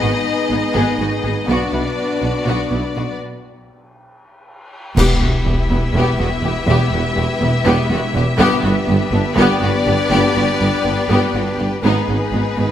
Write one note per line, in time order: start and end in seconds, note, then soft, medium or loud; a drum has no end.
0.00 0.10 G#1 medium
0.00 0.12 G#1 medium
0.00 0.10 G#2 medium
0.00 1.44 B3 medium
0.00 0.09 B3 soft
0.00 1.44 D#4 medium
0.00 1.49 D#4 medium
0.00 0.10 F#4 medium
0.00 1.48 G#4 medium
0.00 1.44 B4 medium
0.00 1.48 D#5 medium
0.50 0.58 G#1 medium
0.50 0.60 G#1 medium
0.50 0.58 G#2 medium
0.50 0.58 B3 medium
0.50 0.59 D#4 medium
0.74 0.84 G#1 medium
0.74 0.83 G#1 medium
0.74 0.83 G#2 medium
0.74 0.97 B3 medium
0.74 0.97 G#4 medium
0.99 1.09 G#1 medium
0.99 1.07 G#1 medium
0.99 1.07 G#2 medium
0.99 1.07 B3 soft
0.99 1.07 F#4 medium
1.23 1.32 G#1 medium
1.23 1.34 G#1 medium
1.23 1.32 G#2 medium
1.23 1.31 B3 medium
1.23 1.32 G#4 medium
1.48 1.58 B1 medium
1.48 1.56 B1 medium
1.48 1.57 B2 medium
1.48 1.71 B3 medium
1.48 3.17 B3 medium
1.48 3.18 B3 medium
1.48 3.21 D4 medium
1.48 3.18 D4 medium
1.48 3.21 F#4 medium
1.48 1.71 F#4 medium
1.48 3.17 B4 medium
1.48 3.18 D5 medium
1.72 1.81 B1 medium
1.72 1.83 B1 soft
1.72 1.81 B2 soft
1.72 1.81 B3 medium
1.72 1.80 E4 soft
2.21 2.29 B1 soft
2.21 2.32 B1 soft
2.21 2.30 B2 soft
2.21 2.30 B3 soft
2.21 2.30 D4 medium
2.46 2.54 B1 medium
2.46 2.57 B1 medium
2.46 2.54 B2 medium
2.46 2.69 B3 medium
2.46 2.70 F#4 medium
2.71 2.79 B1 soft
2.71 2.82 B1 soft
2.71 2.79 B2 soft
2.71 2.80 B3 soft
2.71 2.79 E4 soft
2.96 3.06 B1 soft
2.96 3.05 B1 soft
2.96 3.04 B2 soft
2.96 3.04 B3 soft
2.96 3.04 F#4 soft
4.96 5.04 E1 medium
4.96 5.07 E1 medium
4.96 5.05 E2 medium
4.96 8.35 B3 medium
4.96 5.19 B3 medium
4.96 5.14 B3 medium
4.96 8.35 E4 medium
4.96 8.35 G4 medium
4.96 5.20 G4 medium
4.96 5.14 G4 medium
4.96 8.35 B4 medium
4.96 9.32 E5 medium
4.96 concert bass drum medium
4.96 crash medium
5.20 5.31 E1 medium
5.20 5.29 E1 medium
5.20 5.29 E2 soft
5.20 5.28 B3 medium
5.20 5.29 F#4 medium
5.45 5.54 E1 medium
5.45 5.56 E1 medium
5.45 5.53 E2 medium
5.45 5.54 B3 soft
5.45 5.53 G4 medium
5.69 5.81 E1 medium
5.69 5.79 E1 medium
5.69 5.78 E2 medium
5.69 5.79 B3 medium
5.69 5.77 E4 medium
5.94 6.05 E1 medium
5.94 6.03 E1 medium
5.94 6.02 E2 medium
5.94 6.18 B3 medium
5.94 6.18 G4 medium
6.18 6.29 E1 medium
6.18 6.28 E1 medium
6.18 6.26 E2 medium
6.18 6.28 B3 medium
6.18 6.28 F#4 medium
6.43 6.52 E1 medium
6.43 6.54 E1 medium
6.43 6.51 E2 medium
6.43 6.53 B3 medium
6.43 6.52 G4 medium
6.67 6.76 E1 medium
6.67 6.79 E1 medium
6.67 6.75 E2 medium
6.67 6.91 B3 medium
6.67 6.87 B3 medium
6.67 6.91 G4 medium
6.67 6.86 G4 medium
6.92 7.01 E1 medium
6.92 7.03 E1 medium
6.92 7.00 E2 medium
6.92 7.01 B3 medium
6.92 7.00 F#4 soft
7.16 7.25 E1 medium
7.16 7.27 E1 medium
7.16 7.24 E2 medium
7.16 7.26 B3 medium
7.16 7.24 G4 medium
7.41 7.51 E1 medium
7.41 7.50 E1 medium
7.41 7.49 E2 medium
7.41 7.49 B3 medium
7.41 7.49 E4 medium
7.65 7.76 E1 medium
7.65 7.74 E1 medium
7.65 7.73 E2 medium
7.65 7.88 B3 medium
7.65 7.88 G4 medium
7.90 8.00 E1 medium
7.90 7.99 E1 medium
7.90 7.98 E2 medium
7.90 7.98 B3 medium
7.90 7.98 F#4 medium
8.14 8.24 E1 medium
8.14 8.22 E2 medium
8.14 8.23 B3 medium
8.14 8.23 G4 medium
8.38 8.47 G1 medium
8.38 8.49 G1 loud
8.38 8.47 G2 loud
8.38 8.61 B3 loud
8.38 11.80 B3 loud
8.38 8.56 B3 medium
8.38 11.84 D4 loud
8.38 8.57 D4 medium
8.38 11.80 G4 loud
8.38 8.62 G4 loud
8.38 11.80 B4 loud
8.63 8.71 G1 medium
8.63 8.73 G1 medium
8.63 8.72 G2 medium
8.63 8.71 B3 medium
8.63 8.72 F#4 medium
8.88 8.96 G1 medium
8.88 8.98 G1 medium
8.88 8.96 G2 medium
8.88 8.96 B3 medium
8.88 8.97 G4 medium
9.12 9.20 G1 medium
9.12 9.22 G1 medium
9.12 9.21 G2 medium
9.12 9.20 B3 medium
9.12 9.21 D4 medium
9.36 9.45 G1 loud
9.36 9.47 G1 loud
9.36 9.44 G2 loud
9.36 9.60 B3 loud
9.36 9.60 G4 medium
9.36 11.64 D5 medium
9.61 9.69 G1 medium
9.61 9.72 G1 medium
9.61 9.69 G2 medium
9.61 9.70 B3 medium
9.61 9.70 F#4 medium
9.86 9.94 G1 medium
9.86 9.96 G1 medium
9.86 9.95 G2 medium
9.86 9.95 B3 medium
9.86 9.94 G4 medium
10.10 10.19 G1 medium
10.10 10.21 G1 medium
10.10 10.19 G2 medium
10.10 10.34 B3 medium
10.10 10.29 B3 medium
10.10 10.29 D4 medium
10.10 10.33 G4 medium
10.35 10.43 G1 medium
10.35 10.46 G1 medium
10.35 10.43 G2 medium
10.35 10.44 B3 medium
10.35 10.44 F#4 medium
10.60 10.68 G1 medium
10.60 10.70 G1 medium
10.60 10.68 G2 medium
10.60 10.69 B3 medium
10.60 10.69 G4 medium
10.85 10.95 G1 medium
10.85 10.93 G1 medium
10.85 10.93 G2 medium
10.85 10.93 B3 medium
10.85 10.93 D4 medium
11.09 11.17 G1 medium
11.09 11.20 G1 medium
11.09 11.18 G2 medium
11.09 11.32 B3 medium
11.09 11.33 G4 medium
11.34 11.42 G1 medium
11.34 11.45 G1 medium
11.34 11.43 G2 medium
11.34 11.42 B3 medium
11.34 11.43 F#4 medium
11.58 11.66 G1 medium
11.58 11.70 G1 medium
11.58 11.67 G2 medium
11.58 11.67 B3 medium
11.58 11.67 G4 medium
11.83 11.91 G#1 medium
11.83 11.94 G#1 medium
11.83 11.92 G#2 medium
11.83 12.07 B3 medium
11.83 12.71 B3 medium
11.83 12.02 B3 medium
11.83 12.07 D#4 medium
11.83 12.71 D#4 medium
11.83 12.02 D#4 medium
11.83 12.71 G#4 medium
11.83 12.71 B4 medium
12.08 12.16 G#1 medium
12.08 12.18 G#1 medium
12.08 12.16 G#2 medium
12.08 12.16 B3 medium
12.08 12.17 C#4 medium
12.32 12.40 G#1 medium
12.32 12.43 G#1 medium
12.32 12.41 G#2 medium
12.32 12.41 B3 medium
12.32 12.42 D#4 medium
12.57 12.65 G#1 medium
12.57 12.67 G#1 medium
12.57 12.65 G#2 medium
12.57 12.65 B3 medium
12.57 12.66 B3 medium